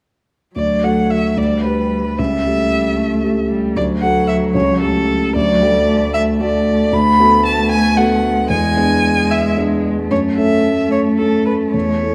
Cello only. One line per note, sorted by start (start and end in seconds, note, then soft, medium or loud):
0.56 1.38 F#3 soft
1.37 2.17 G3 soft
2.18 2.98 G3 soft
2.97 3.23 A3 soft
3.24 3.32 A3 soft
3.50 3.78 G3 soft
3.76 5.34 F#3 soft
5.35 5.63 F#3 medium
5.61 5.87 G3 soft
5.87 6.13 A3 soft
6.13 6.90 A3 soft
6.92 8.46 A3 medium
8.50 10.07 G#3 medium
10.10 12.15 A3 soft